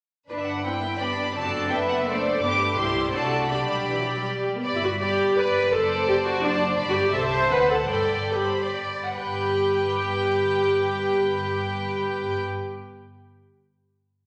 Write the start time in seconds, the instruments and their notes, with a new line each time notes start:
0.29 double bass section G1, viola section D4, cello section D4, violin section B4
0.39 violin section E5
0.47 violin section F#5
0.65 viola section C4, cello section E4, violin section G5
0.81 viola section B3
1.00 viola section B3 D4, cello section D4, violin section G4 D5 B5
1.17 viola section B3
1.34 double bass section F#1, viola section C4 D4, cello section F#4, violin section A4 D5 A5
1.70 viola section B3, cello section B4, violin section B4 E5 G5
1.89 violin section F#5
2.07 viola section A3 D4, cello section A4, violin section C5 D5
2.41 double bass section G1, viola section B3 D4, cello section G4, violin section G4 B4 D6
2.59 viola section A3
2.76 double bass section C2, viola section G3 E4, cello section G4, violin section G4 C5 C6
3.12 double bass section C2, viola section A3 D4, violin section F#4 D5 A5, cello section A4
3.49 double bass section B1, viola section G3 D4, cello section G4, violin section G4 D5 B5
3.89 viola section E3
4.00 viola section F#3
4.18 viola section G3
4.56 viola section B3
4.64 double bass section G1, cello section G2, violin section D5 B5
4.75 viola section E4
4.84 viola section F#4
5.00 viola section G4, violin section D5 B5
5.37 viola section B4, violin section D5 B5
5.71 double bass section F#1, cello section F#2, viola section A4, violin section C5 D5 A5
6.08 viola section G4
6.25 viola section F#4
6.43 viola section D4, violin section C5 D5 A5
6.77 double bass section G1, cello section G2, violin section D5 B5
6.89 viola section F#4
6.96 viola section G4
7.13 double bass section C2, cello section C3, viola section A4, violin section C5 E5 A5
7.32 viola section C5
7.50 double bass section D2, cello section D3, viola section B4, violin section C5 F#5 A5
7.69 viola section A4
7.89 double bass section G1, cello section G2, viola section A4, violin section D5 G5 B5
8.31 viola section G4, violin section B4 B5
8.43 violin section C5
8.63 violin section D5
9.04 violin section F#5
9.13 double bass section G1, cello section G2, viola section G4, violin section B4 G5